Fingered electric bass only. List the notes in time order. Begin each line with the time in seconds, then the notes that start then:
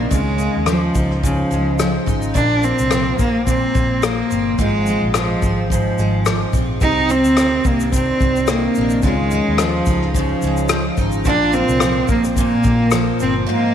0.12 C#2
0.57 D#2
0.96 C#2
1.51 C#2
2.08 G#1
2.36 A#1
2.80 C2
3.19 A#1
3.75 A#1
4.32 G1
4.59 G#1
5.02 A#1
5.43 G#1
5.99 G#1
6.53 A#1
6.81 C2
7.26 D2
7.65 C2
8.21 C2
8.78 A#1
9.04 C#2
9.48 D#2
9.87 C#2
10.43 C#2
10.98 G#1
11.26 A#1
11.69 C2
12.09 A#1
12.65 A#1
13.21 G1